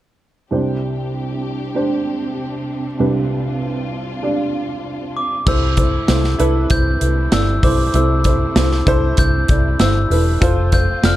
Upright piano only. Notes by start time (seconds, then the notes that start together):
0.51 C2 C3 D4 G4 C5
1.75 D4 G4 C5
2.99 C2 C3 D4 G4 B4
4.23 D4 G4 D5
5.46 C3 E4 A4 C5
5.77 E4 A4 C5
6.08 E4 A4 C5
6.39 E4 A4 B4
6.69 E4 C5
7.01 E4 A4 B4
7.31 E4 A4 D5
7.63 E4 A4 C5
7.94 C3 E4 A4 C5
8.25 E4 A4 C5
8.55 E4 A4 C5
8.86 E4 A4 C5
9.18 E4 A4 C5
9.48 E4 A4 D5
9.80 E4 A4 C5
10.10 E4 A4 B4
10.41 F4 A4 C5
10.72 F4 A4 C5
11.03 F4 A4 D5